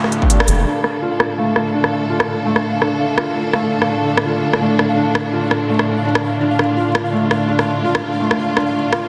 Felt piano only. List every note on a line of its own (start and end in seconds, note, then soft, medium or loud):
0.00 0.68 A3 loud
0.00 0.66 D4 loud
0.00 0.68 F4 loud
0.30 0.47 D5 medium
0.48 0.65 A4 medium
0.66 0.83 D4 medium
1.02 1.13 F4 medium
1.20 1.37 F4 medium
1.38 1.72 A3 medium
1.74 1.91 D4 medium
2.10 2.21 F4 medium
2.28 2.45 F4 medium
2.46 2.80 A3 medium
2.82 2.99 D4 medium
3.18 3.29 F4 medium
3.35 3.53 F4 medium
3.53 3.88 A3 loud
3.89 4.06 D4 medium
4.25 4.37 F4 medium
4.43 4.60 F4 medium
4.61 4.95 A3 medium
4.97 5.14 D4 medium
5.33 5.44 F4 medium
5.51 5.68 F4 medium
5.69 6.03 A3 medium
6.05 6.22 D4 medium
6.41 6.58 D4 medium
6.77 6.88 F4 medium
6.95 7.12 F4 medium
7.13 7.47 A3 medium
7.49 7.66 D4 loud
7.84 7.96 F4 medium
8.02 8.20 F4 medium
8.20 8.55 A3 medium
8.56 8.74 D4 medium
8.92 9.04 F4 loud